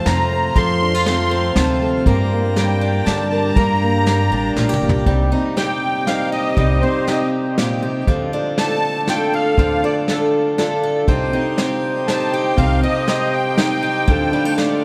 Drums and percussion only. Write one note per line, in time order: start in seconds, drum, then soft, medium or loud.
0.06 snare medium
0.06 closed hi-hat soft
0.56 kick medium
0.56 closed hi-hat medium
1.06 snare medium
1.06 closed hi-hat soft
1.56 snare medium
1.56 closed hi-hat soft
2.06 kick medium
2.06 closed hi-hat medium
2.56 snare medium
2.56 closed hi-hat soft
3.07 snare medium
3.07 closed hi-hat soft
3.56 kick loud
3.56 closed hi-hat medium
4.07 snare medium
4.07 closed hi-hat soft
4.56 snare soft
4.73 mid tom medium
4.89 floor tom medium
5.06 kick medium
5.06 closed hi-hat soft
5.57 snare medium
5.57 closed hi-hat soft
6.07 snare medium
6.07 closed hi-hat soft
6.57 kick medium
6.57 closed hi-hat medium
7.08 snare medium
7.08 closed hi-hat soft
7.58 snare medium
7.58 closed hi-hat soft
8.07 kick medium
8.07 closed hi-hat medium
8.58 snare medium
8.58 closed hi-hat soft
9.07 snare medium
9.07 closed hi-hat soft
9.58 kick medium
9.58 closed hi-hat soft
10.08 snare medium
10.08 closed hi-hat soft
10.58 snare medium
10.58 closed hi-hat soft
11.08 kick medium
11.08 closed hi-hat soft
11.58 snare medium
11.58 closed hi-hat soft
12.08 snare medium
12.08 closed hi-hat soft
12.57 kick medium
12.57 closed hi-hat medium
13.08 snare medium
13.08 closed hi-hat soft
13.57 snare medium
13.57 closed hi-hat soft
14.07 kick loud
14.07 closed hi-hat soft
14.58 snare medium
14.58 closed hi-hat soft